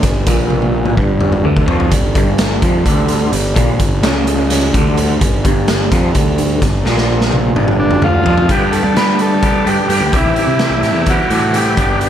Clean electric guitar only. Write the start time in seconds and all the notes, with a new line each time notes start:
0.05 G2
0.28 A#2
0.97 G2
1.45 D3
1.69 F3
1.92 G2
2.16 G2
2.62 F3
2.87 D3
3.33 G2
3.56 A#2
3.80 G2
4.04 C#3
4.75 D3
5.21 G2
5.45 G2
5.92 F3
6.15 D3
6.63 G2
6.86 A#2
7.56 G2
8.04 D3
8.26 F3
8.49 G2 D3 G3 B3 D4 G4
8.72 G3 B3 D4 G4
8.94 G2 D3 G3 B3 D4 G4
9.17 G3 B3 D4 G4
9.41 G3 B3 D4 G4
9.64 G2 D3 G3 B3 D4 G4
9.87 G3 B3 D4 G4
10.12 C3 E3 G3 E4 G4
10.37 G3 E4 G4
10.59 C3 E3 G3 E4 G4
10.83 G3 E4 G4
11.08 E3 G3 E4 G4
11.30 C3 E3 G3 E4 G4
11.52 E3 G3 E4 G4
11.77 G2 D3 G3 B3 D4 G4
12.00 G3 B3 D4 G4